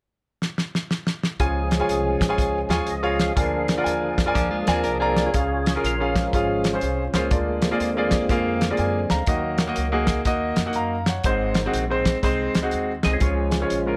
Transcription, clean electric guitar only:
4.35 F3 D4
4.51 G#3 F4
4.68 C4 G#4
4.84 D4 A#4
5.00 C4 G#4

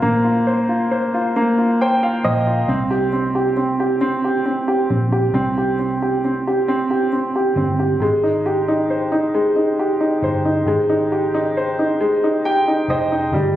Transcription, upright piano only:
Already playing: A#3 F4 C5
0.02 A#3
0.24 F4
0.47 C5
0.69 F4
0.91 C5
1.14 F4
1.36 A#3
1.58 F4
1.81 C5 G5
2.03 F4 F5
2.24 C5 D#5
2.47 F4
2.68 C4
2.91 G4
3.13 C4
3.35 G4
3.57 C4
3.80 G4
4.01 C4
4.24 G4
4.46 C4
4.68 G4
4.90 C4
5.12 G4
5.34 C4
5.58 G4
5.79 C4
6.02 G4
6.25 C4
6.47 G4
6.68 C4
6.91 G4
7.13 C4
7.36 G4
7.57 C4
7.79 G4
8.02 G#3
8.23 D#4
8.46 G4
8.68 D#4
8.90 C5
9.12 D#4
9.35 G#3
9.56 D#4
9.79 G4
10.01 D#4
10.24 C5
10.45 D#4
10.68 G#3
10.89 D#4
11.12 G4
11.34 D#4
11.57 C5
11.79 D#4
12.01 G#3
12.24 D#4
12.45 G4 G5
12.68 D#4
12.90 C5 D#5
13.12 D#4
13.34 G3

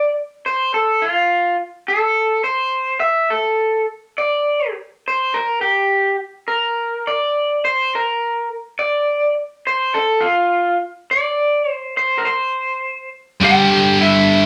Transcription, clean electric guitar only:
Already playing: D5
0.46 C5
0.74 A4
1.02 F4
1.88 A4
2.44 C5
3.00 E5
3.30 A4
4.18 D5
5.08 C5
5.34 A#4
5.61 G4
6.48 A#4
7.07 D5
7.65 C5
7.95 A#4
8.79 D5
9.67 C5
9.94 A4
10.21 F4
11.11 D5
11.71 C5
11.97 C5
12.18 A#4
12.25 C5
13.43 G4 G5
14.01 E4 E5

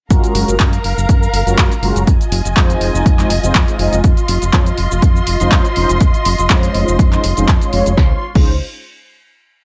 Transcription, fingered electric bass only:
0.10 F#2
0.35 F#1
0.48 F#1
0.60 F#2
0.84 F#1
0.97 F#1
1.09 F#2
1.33 F#1
1.46 F#1
1.58 F#2
1.82 F#1
1.95 F#1
2.07 F2
2.32 F1
2.45 F1
2.56 F2
2.81 F1
2.94 F1
3.06 F2
3.30 F1
3.43 F1
3.55 F2
3.79 F1
3.92 F1
4.04 F2
4.29 F1
4.42 F1
4.53 F2
4.78 F1
4.91 F1
5.02 F2
5.27 F1
5.41 F1
5.51 F2
5.76 F1
5.89 F1
6.01 F2
6.26 F1
6.39 F1
6.50 F2
6.75 F1
6.88 F1
6.99 F2
7.24 F1
7.38 F1
7.48 F2
7.73 F1
7.86 F1
7.97 C#2
8.35 C#2

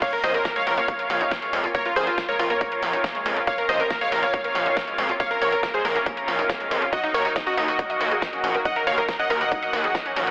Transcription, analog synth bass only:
0.24 A#1
0.67 A#1
1.10 A#1
1.53 F2
1.96 A#1
2.39 A#1
2.83 A#1
3.26 F2
3.69 A#1
4.12 A#1
4.55 A#1
4.98 F2
5.42 A#1
5.85 A#1
6.28 A#1
6.71 F2
7.14 D#2
7.57 D#2
8.01 D#2
8.44 A#1
8.87 D#2
9.30 D#2
9.73 D#2
10.16 A#1

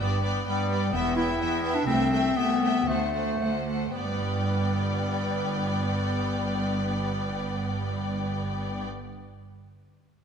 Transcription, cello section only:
0.00 G2
0.46 G2
0.93 E2
1.39 E2
1.86 C2
2.35 C2
2.86 D2
3.39 D2
3.96 G2

